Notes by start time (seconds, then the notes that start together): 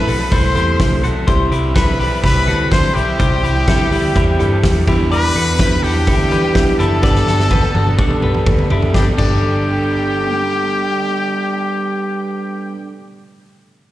Already playing: A3 C4 E4 A4 B4 B5
0.08 B1 A3 C4 E4 F#4 A4, hi-hat pedal, open hi-hat
0.32 C2 E3 A3 C4 E4 A4 C5 C6, kick, hi-hat pedal, open hi-hat
0.55 E2 A3 C4 E4 G4 A4 C5, hi-hat pedal, open hi-hat
0.80 C2 A3 C4 E4 A4, kick, snare, hi-hat pedal, open hi-hat
1.03 B1 A3 C4 E4 F#4 A4, hi-hat pedal, open hi-hat
1.27 C2 C3 E3 G3 C4 E4 G4 C5, kick, hi-hat pedal, open hi-hat
1.51 C2 C3 E3 G3 C4 E4 G4, hi-hat pedal, open hi-hat
1.75 C3 E3 G3 C4 E4 G4 A4 B4 B5, kick, snare, hi-hat pedal, open hi-hat
1.98 B1 G3 C4 E4 G4, hi-hat pedal, open hi-hat
2.23 C2 E3 G3 C4 E4 G4 B4 B5, kick, hi-hat pedal, open hi-hat
2.47 D2 G3 C4 E4 F#4 G4 A4, hi-hat pedal, open hi-hat
2.71 G3 C4 E4 G4 C5 C6, kick, snare, hi-hat pedal, open hi-hat
2.95 B1 G3 C4 E4 G4 G5, hi-hat pedal, open hi-hat
3.19 C2 C3 E3 G3 C4 E4 G4 C5, kick, hi-hat pedal, open hi-hat
3.43 C2 C3 E3 G3 C4 E4 G4, hi-hat pedal, open hi-hat
3.67 C3 E3 G3 C4 E4 G4 A4, kick, snare, hi-hat pedal, open hi-hat
3.91 D2 G3 C4 E4 G4, hi-hat pedal, open hi-hat
4.15 E2 E3 G3 C4 E4 G4, kick, hi-hat pedal, open hi-hat
4.39 G2 G3 C4 E4 G4 A4 A5, hi-hat pedal, open hi-hat
4.63 E2 G3 C4 E4 G4 G5, kick, snare, hi-hat pedal, open hi-hat
4.87 E2 E3 G3 B3 D4 E4 G4 E5, kick, crash
5.11 E2 B2 E3 G3 D4 E4 B4 D5 B5, hi-hat pedal, open hi-hat
5.34 E2 B2 E3 G3 D4 E4 F#4 A4, hi-hat pedal, open hi-hat
5.58 E2 B2 E3 G3 B3 D4 E4 G4 B4, kick, snare, hi-hat pedal, open hi-hat
5.83 E2 E3 G3 D4 E4 F#4 G4 A4 G5, hi-hat pedal, open hi-hat
6.07 D2 E3 G3 B3 D4 E4 G4 A4, kick, hi-hat pedal, open hi-hat
6.30 E2 E3 G3 B3 D4 E4 G4 B4, hi-hat pedal, open hi-hat
6.54 B3 D4 E4 G4, kick, snare, hi-hat pedal, open hi-hat
6.78 F#1 G3 D4 E4 G4 A4 A5, hi-hat pedal, open hi-hat
6.82 E3
7.02 G1 G3 B3 D4 G4 A4 B4 D5, kick, snare
7.15 snare
7.27 G1 G3 B3 D4 F#4 A4, snare
7.39 snare
7.50 G3 B3 D4 G4 A4 B4, kick, high tom
7.63 high tom
7.74 G1 B3 D4 F#4 A4, high tom
7.87 mid tom
7.98 A1 G3 B3 D4 G4 A4, kick, mid tom
8.10 mid tom
8.21 B1 B3 D4 G4 A4 B4, mid tom
8.34 mid tom
8.46 D2 B3 D4 G4 A4, kick, mid tom
8.59 floor tom
8.70 F#1 B3 D4 E4 G4 A4, floor tom
8.82 floor tom
8.90 G3 B3
8.94 G1 B3 D4 G4 A4 G5, kick, snare
9.01 D4
9.06 A4
9.14 G3 B3
9.18 G1 B3 D4 G4 A4 G5, kick, crash
9.25 D4
9.30 A4